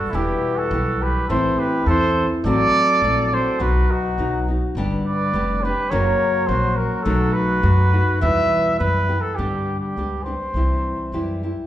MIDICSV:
0, 0, Header, 1, 5, 480
1, 0, Start_track
1, 0, Key_signature, 1, "minor"
1, 0, Tempo, 576369
1, 115, Time_signature, 2, 2, 24, 8
1, 6833, Tempo, 584226
1, 9678, End_track
2, 0, Start_track
2, 0, Title_t, "Trumpet"
2, 0, Program_c, 0, 56
2, 0, Note_on_c, 0, 69, 68
2, 125, Note_on_c, 0, 67, 82
2, 137, Note_off_c, 0, 69, 0
2, 485, Note_on_c, 0, 69, 78
2, 498, Note_off_c, 0, 67, 0
2, 854, Note_on_c, 0, 71, 74
2, 866, Note_off_c, 0, 69, 0
2, 1079, Note_off_c, 0, 71, 0
2, 1084, Note_on_c, 0, 72, 90
2, 1331, Note_on_c, 0, 71, 78
2, 1343, Note_off_c, 0, 72, 0
2, 1563, Note_off_c, 0, 71, 0
2, 1577, Note_on_c, 0, 72, 104
2, 1906, Note_off_c, 0, 72, 0
2, 2052, Note_on_c, 0, 74, 118
2, 2781, Note_on_c, 0, 72, 88
2, 2793, Note_off_c, 0, 74, 0
2, 3012, Note_on_c, 0, 71, 88
2, 3025, Note_off_c, 0, 72, 0
2, 3257, Note_on_c, 0, 66, 77
2, 3269, Note_off_c, 0, 71, 0
2, 3729, Note_off_c, 0, 66, 0
2, 4212, Note_on_c, 0, 74, 86
2, 4693, Note_on_c, 0, 71, 76
2, 4706, Note_off_c, 0, 74, 0
2, 4913, Note_on_c, 0, 73, 92
2, 4925, Note_off_c, 0, 71, 0
2, 5384, Note_on_c, 0, 72, 88
2, 5396, Note_off_c, 0, 73, 0
2, 5633, Note_on_c, 0, 70, 77
2, 5645, Note_off_c, 0, 72, 0
2, 5853, Note_on_c, 0, 69, 99
2, 5865, Note_off_c, 0, 70, 0
2, 6104, Note_on_c, 0, 71, 91
2, 6116, Note_off_c, 0, 69, 0
2, 6828, Note_off_c, 0, 71, 0
2, 6843, Note_on_c, 0, 76, 102
2, 7283, Note_off_c, 0, 76, 0
2, 7318, Note_on_c, 0, 71, 89
2, 7657, Note_on_c, 0, 69, 81
2, 7669, Note_off_c, 0, 71, 0
2, 7777, Note_on_c, 0, 67, 69
2, 7789, Note_off_c, 0, 69, 0
2, 8137, Note_off_c, 0, 67, 0
2, 8142, Note_on_c, 0, 67, 66
2, 8497, Note_on_c, 0, 72, 68
2, 8509, Note_off_c, 0, 67, 0
2, 9469, Note_off_c, 0, 72, 0
2, 9678, End_track
3, 0, Start_track
3, 0, Title_t, "Trumpet"
3, 0, Program_c, 1, 56
3, 0, Note_on_c, 1, 66, 64
3, 84, Note_on_c, 1, 64, 66
3, 97, Note_off_c, 1, 66, 0
3, 463, Note_on_c, 1, 66, 60
3, 476, Note_off_c, 1, 64, 0
3, 840, Note_on_c, 1, 67, 67
3, 852, Note_off_c, 1, 66, 0
3, 1064, Note_off_c, 1, 67, 0
3, 1069, Note_on_c, 1, 69, 61
3, 1320, Note_on_c, 1, 67, 66
3, 1333, Note_off_c, 1, 69, 0
3, 1547, Note_off_c, 1, 67, 0
3, 1552, Note_on_c, 1, 69, 87
3, 1893, Note_off_c, 1, 69, 0
3, 2042, Note_on_c, 1, 69, 90
3, 2763, Note_off_c, 1, 69, 0
3, 2763, Note_on_c, 1, 69, 78
3, 2995, Note_on_c, 1, 66, 77
3, 3008, Note_off_c, 1, 69, 0
3, 3255, Note_on_c, 1, 63, 56
3, 3267, Note_off_c, 1, 66, 0
3, 3728, Note_off_c, 1, 63, 0
3, 4194, Note_on_c, 1, 71, 57
3, 4674, Note_on_c, 1, 67, 58
3, 4687, Note_off_c, 1, 71, 0
3, 4919, Note_on_c, 1, 70, 63
3, 4932, Note_off_c, 1, 67, 0
3, 5393, Note_on_c, 1, 66, 70
3, 5406, Note_off_c, 1, 70, 0
3, 5646, Note_off_c, 1, 66, 0
3, 5646, Note_on_c, 1, 66, 62
3, 5877, Note_off_c, 1, 66, 0
3, 5877, Note_on_c, 1, 66, 70
3, 6124, Note_off_c, 1, 66, 0
3, 6124, Note_on_c, 1, 66, 67
3, 6838, Note_off_c, 1, 66, 0
3, 6851, Note_on_c, 1, 71, 71
3, 7287, Note_off_c, 1, 71, 0
3, 9678, End_track
4, 0, Start_track
4, 0, Title_t, "Nylon-string guitar"
4, 0, Program_c, 2, 24
4, 0, Note_on_c, 2, 55, 51
4, 0, Note_on_c, 2, 59, 47
4, 0, Note_on_c, 2, 62, 54
4, 0, Note_on_c, 2, 67, 46
4, 110, Note_off_c, 2, 55, 0
4, 113, Note_off_c, 2, 67, 0
4, 115, Note_on_c, 2, 47, 53
4, 116, Note_off_c, 2, 59, 0
4, 117, Note_on_c, 2, 40, 67
4, 118, Note_off_c, 2, 62, 0
4, 120, Note_on_c, 2, 52, 64
4, 120, Note_on_c, 2, 55, 66
4, 121, Note_on_c, 2, 59, 62
4, 123, Note_on_c, 2, 67, 72
4, 594, Note_off_c, 2, 52, 0
4, 599, Note_off_c, 2, 47, 0
4, 600, Note_off_c, 2, 40, 0
4, 602, Note_off_c, 2, 55, 0
4, 602, Note_off_c, 2, 59, 0
4, 603, Note_off_c, 2, 67, 0
4, 604, Note_on_c, 2, 52, 50
4, 613, Note_on_c, 2, 55, 53
4, 614, Note_on_c, 2, 67, 52
4, 617, Note_on_c, 2, 59, 56
4, 1066, Note_off_c, 2, 52, 0
4, 1072, Note_off_c, 2, 59, 0
4, 1076, Note_on_c, 2, 52, 59
4, 1078, Note_off_c, 2, 55, 0
4, 1079, Note_off_c, 2, 67, 0
4, 1082, Note_on_c, 2, 59, 57
4, 1082, Note_on_c, 2, 64, 67
4, 1083, Note_on_c, 2, 45, 71
4, 1083, Note_on_c, 2, 60, 78
4, 1549, Note_off_c, 2, 52, 0
4, 1557, Note_off_c, 2, 60, 0
4, 1559, Note_off_c, 2, 64, 0
4, 1559, Note_on_c, 2, 52, 53
4, 1561, Note_off_c, 2, 59, 0
4, 1562, Note_off_c, 2, 45, 0
4, 1567, Note_on_c, 2, 60, 63
4, 1569, Note_on_c, 2, 64, 59
4, 2039, Note_off_c, 2, 52, 0
4, 2039, Note_off_c, 2, 60, 0
4, 2043, Note_on_c, 2, 54, 68
4, 2044, Note_off_c, 2, 64, 0
4, 2045, Note_on_c, 2, 45, 64
4, 2047, Note_on_c, 2, 57, 79
4, 2049, Note_on_c, 2, 60, 81
4, 2054, Note_on_c, 2, 66, 78
4, 2509, Note_off_c, 2, 54, 0
4, 2509, Note_off_c, 2, 57, 0
4, 2517, Note_off_c, 2, 60, 0
4, 2519, Note_on_c, 2, 54, 50
4, 2519, Note_on_c, 2, 57, 64
4, 2520, Note_off_c, 2, 45, 0
4, 2525, Note_off_c, 2, 66, 0
4, 2527, Note_on_c, 2, 60, 53
4, 2535, Note_on_c, 2, 66, 64
4, 2757, Note_off_c, 2, 66, 0
4, 2762, Note_off_c, 2, 60, 0
4, 2763, Note_off_c, 2, 54, 0
4, 2763, Note_off_c, 2, 57, 0
4, 2767, Note_on_c, 2, 66, 39
4, 2772, Note_on_c, 2, 60, 38
4, 2774, Note_on_c, 2, 57, 38
4, 2992, Note_off_c, 2, 66, 0
4, 2993, Note_on_c, 2, 47, 69
4, 2993, Note_on_c, 2, 54, 64
4, 2996, Note_off_c, 2, 57, 0
4, 2997, Note_off_c, 2, 60, 0
4, 2999, Note_on_c, 2, 59, 61
4, 3000, Note_on_c, 2, 63, 63
4, 3002, Note_on_c, 2, 66, 71
4, 3474, Note_off_c, 2, 47, 0
4, 3474, Note_off_c, 2, 54, 0
4, 3477, Note_off_c, 2, 59, 0
4, 3477, Note_off_c, 2, 63, 0
4, 3478, Note_off_c, 2, 66, 0
4, 3486, Note_on_c, 2, 54, 47
4, 3491, Note_on_c, 2, 59, 53
4, 3493, Note_on_c, 2, 63, 56
4, 3499, Note_on_c, 2, 66, 53
4, 3722, Note_off_c, 2, 66, 0
4, 3727, Note_off_c, 2, 54, 0
4, 3729, Note_off_c, 2, 59, 0
4, 3731, Note_off_c, 2, 63, 0
4, 3732, Note_on_c, 2, 66, 32
4, 3740, Note_on_c, 2, 63, 29
4, 3748, Note_on_c, 2, 59, 32
4, 3963, Note_off_c, 2, 66, 0
4, 3967, Note_off_c, 2, 63, 0
4, 3969, Note_off_c, 2, 59, 0
4, 3970, Note_on_c, 2, 50, 79
4, 3972, Note_on_c, 2, 43, 65
4, 3979, Note_on_c, 2, 59, 65
4, 3979, Note_on_c, 2, 62, 89
4, 3980, Note_on_c, 2, 55, 61
4, 3983, Note_on_c, 2, 67, 76
4, 4437, Note_off_c, 2, 55, 0
4, 4437, Note_off_c, 2, 59, 0
4, 4445, Note_off_c, 2, 62, 0
4, 4447, Note_off_c, 2, 50, 0
4, 4447, Note_on_c, 2, 55, 52
4, 4447, Note_on_c, 2, 59, 52
4, 4448, Note_off_c, 2, 43, 0
4, 4450, Note_off_c, 2, 67, 0
4, 4455, Note_on_c, 2, 62, 52
4, 4460, Note_on_c, 2, 67, 66
4, 4690, Note_off_c, 2, 55, 0
4, 4690, Note_off_c, 2, 59, 0
4, 4693, Note_off_c, 2, 67, 0
4, 4694, Note_off_c, 2, 62, 0
4, 4703, Note_on_c, 2, 67, 42
4, 4706, Note_on_c, 2, 62, 35
4, 4712, Note_on_c, 2, 59, 35
4, 4715, Note_on_c, 2, 55, 33
4, 4926, Note_off_c, 2, 55, 0
4, 4927, Note_off_c, 2, 59, 0
4, 4929, Note_off_c, 2, 67, 0
4, 4930, Note_on_c, 2, 54, 72
4, 4930, Note_on_c, 2, 58, 67
4, 4931, Note_off_c, 2, 62, 0
4, 4932, Note_on_c, 2, 42, 64
4, 4934, Note_on_c, 2, 49, 61
4, 4935, Note_on_c, 2, 66, 71
4, 4937, Note_on_c, 2, 61, 68
4, 5398, Note_off_c, 2, 54, 0
4, 5404, Note_off_c, 2, 42, 0
4, 5404, Note_off_c, 2, 58, 0
4, 5406, Note_off_c, 2, 49, 0
4, 5406, Note_off_c, 2, 66, 0
4, 5407, Note_off_c, 2, 61, 0
4, 5408, Note_on_c, 2, 54, 50
4, 5417, Note_on_c, 2, 58, 47
4, 5419, Note_on_c, 2, 61, 62
4, 5425, Note_on_c, 2, 66, 49
4, 5864, Note_off_c, 2, 54, 0
4, 5872, Note_off_c, 2, 58, 0
4, 5874, Note_off_c, 2, 66, 0
4, 5874, Note_on_c, 2, 54, 78
4, 5875, Note_off_c, 2, 61, 0
4, 5875, Note_on_c, 2, 57, 73
4, 5876, Note_on_c, 2, 47, 63
4, 5879, Note_on_c, 2, 63, 76
4, 5884, Note_on_c, 2, 66, 68
4, 6337, Note_off_c, 2, 54, 0
4, 6344, Note_off_c, 2, 63, 0
4, 6346, Note_off_c, 2, 66, 0
4, 6347, Note_off_c, 2, 57, 0
4, 6347, Note_on_c, 2, 54, 49
4, 6354, Note_on_c, 2, 63, 57
4, 6355, Note_off_c, 2, 47, 0
4, 6356, Note_on_c, 2, 66, 59
4, 6357, Note_on_c, 2, 57, 61
4, 6597, Note_off_c, 2, 54, 0
4, 6598, Note_off_c, 2, 63, 0
4, 6599, Note_off_c, 2, 66, 0
4, 6602, Note_off_c, 2, 57, 0
4, 6608, Note_on_c, 2, 63, 38
4, 6609, Note_on_c, 2, 66, 46
4, 6619, Note_on_c, 2, 57, 32
4, 6839, Note_off_c, 2, 63, 0
4, 6839, Note_on_c, 2, 52, 69
4, 6840, Note_off_c, 2, 66, 0
4, 6840, Note_on_c, 2, 40, 66
4, 6842, Note_off_c, 2, 57, 0
4, 6842, Note_on_c, 2, 47, 63
4, 6846, Note_on_c, 2, 55, 84
4, 6847, Note_on_c, 2, 67, 65
4, 6848, Note_on_c, 2, 59, 79
4, 7306, Note_off_c, 2, 52, 0
4, 7314, Note_off_c, 2, 40, 0
4, 7315, Note_off_c, 2, 47, 0
4, 7315, Note_off_c, 2, 59, 0
4, 7316, Note_on_c, 2, 52, 52
4, 7317, Note_off_c, 2, 55, 0
4, 7320, Note_on_c, 2, 55, 62
4, 7325, Note_on_c, 2, 59, 56
4, 7327, Note_off_c, 2, 67, 0
4, 7331, Note_on_c, 2, 67, 51
4, 7550, Note_off_c, 2, 67, 0
4, 7557, Note_off_c, 2, 59, 0
4, 7559, Note_off_c, 2, 52, 0
4, 7560, Note_on_c, 2, 67, 43
4, 7561, Note_off_c, 2, 55, 0
4, 7567, Note_on_c, 2, 59, 45
4, 7568, Note_on_c, 2, 52, 37
4, 7571, Note_on_c, 2, 55, 37
4, 7793, Note_off_c, 2, 55, 0
4, 7794, Note_off_c, 2, 67, 0
4, 7795, Note_off_c, 2, 59, 0
4, 7798, Note_off_c, 2, 52, 0
4, 7798, Note_on_c, 2, 43, 49
4, 7803, Note_on_c, 2, 55, 50
4, 7804, Note_on_c, 2, 50, 55
4, 7804, Note_on_c, 2, 59, 59
4, 7804, Note_on_c, 2, 67, 53
4, 7808, Note_on_c, 2, 62, 53
4, 8277, Note_off_c, 2, 43, 0
4, 8277, Note_off_c, 2, 55, 0
4, 8280, Note_off_c, 2, 50, 0
4, 8280, Note_off_c, 2, 59, 0
4, 8280, Note_off_c, 2, 67, 0
4, 8282, Note_off_c, 2, 62, 0
4, 8287, Note_on_c, 2, 55, 47
4, 8292, Note_on_c, 2, 59, 38
4, 8295, Note_on_c, 2, 62, 41
4, 8297, Note_on_c, 2, 67, 53
4, 8510, Note_off_c, 2, 67, 0
4, 8517, Note_off_c, 2, 62, 0
4, 8520, Note_on_c, 2, 67, 29
4, 8526, Note_on_c, 2, 62, 34
4, 8527, Note_off_c, 2, 55, 0
4, 8529, Note_off_c, 2, 59, 0
4, 8538, Note_on_c, 2, 55, 25
4, 8538, Note_on_c, 2, 59, 27
4, 8754, Note_off_c, 2, 55, 0
4, 8755, Note_off_c, 2, 67, 0
4, 8758, Note_off_c, 2, 62, 0
4, 8761, Note_off_c, 2, 59, 0
4, 8763, Note_on_c, 2, 48, 59
4, 8764, Note_on_c, 2, 55, 49
4, 8765, Note_on_c, 2, 52, 56
4, 8772, Note_on_c, 2, 64, 60
4, 8778, Note_on_c, 2, 67, 52
4, 9228, Note_off_c, 2, 52, 0
4, 9232, Note_off_c, 2, 55, 0
4, 9235, Note_off_c, 2, 64, 0
4, 9236, Note_off_c, 2, 67, 0
4, 9238, Note_on_c, 2, 52, 49
4, 9239, Note_off_c, 2, 48, 0
4, 9242, Note_on_c, 2, 55, 59
4, 9245, Note_on_c, 2, 64, 59
4, 9246, Note_on_c, 2, 67, 56
4, 9473, Note_off_c, 2, 67, 0
4, 9481, Note_off_c, 2, 52, 0
4, 9482, Note_off_c, 2, 64, 0
4, 9483, Note_on_c, 2, 67, 38
4, 9484, Note_off_c, 2, 55, 0
4, 9492, Note_on_c, 2, 64, 39
4, 9497, Note_on_c, 2, 55, 29
4, 9678, Note_off_c, 2, 55, 0
4, 9678, Note_off_c, 2, 64, 0
4, 9678, Note_off_c, 2, 67, 0
4, 9678, End_track
5, 0, Start_track
5, 0, Title_t, "Upright bass"
5, 0, Program_c, 3, 32
5, 0, Note_on_c, 3, 28, 59
5, 101, Note_off_c, 3, 28, 0
5, 107, Note_on_c, 3, 28, 91
5, 271, Note_off_c, 3, 28, 0
5, 590, Note_on_c, 3, 35, 95
5, 906, Note_off_c, 3, 35, 0
5, 1080, Note_on_c, 3, 33, 89
5, 1240, Note_off_c, 3, 33, 0
5, 1551, Note_on_c, 3, 40, 89
5, 1865, Note_off_c, 3, 40, 0
5, 2031, Note_on_c, 3, 33, 99
5, 2193, Note_off_c, 3, 33, 0
5, 2512, Note_on_c, 3, 34, 92
5, 2824, Note_off_c, 3, 34, 0
5, 2997, Note_on_c, 3, 35, 86
5, 3156, Note_off_c, 3, 35, 0
5, 3482, Note_on_c, 3, 35, 82
5, 3793, Note_off_c, 3, 35, 0
5, 3956, Note_on_c, 3, 31, 81
5, 4117, Note_off_c, 3, 31, 0
5, 4443, Note_on_c, 3, 29, 88
5, 4755, Note_off_c, 3, 29, 0
5, 4925, Note_on_c, 3, 30, 97
5, 5083, Note_off_c, 3, 30, 0
5, 5402, Note_on_c, 3, 34, 95
5, 5711, Note_off_c, 3, 34, 0
5, 5877, Note_on_c, 3, 35, 91
5, 6036, Note_off_c, 3, 35, 0
5, 6357, Note_on_c, 3, 42, 97
5, 6669, Note_off_c, 3, 42, 0
5, 6850, Note_on_c, 3, 40, 97
5, 7004, Note_off_c, 3, 40, 0
5, 7323, Note_on_c, 3, 42, 90
5, 7632, Note_off_c, 3, 42, 0
5, 7803, Note_on_c, 3, 43, 70
5, 8113, Note_off_c, 3, 43, 0
5, 8279, Note_on_c, 3, 37, 62
5, 8590, Note_off_c, 3, 37, 0
5, 8751, Note_on_c, 3, 36, 77
5, 9064, Note_off_c, 3, 36, 0
5, 9229, Note_on_c, 3, 42, 67
5, 9543, Note_off_c, 3, 42, 0
5, 9678, End_track
0, 0, End_of_file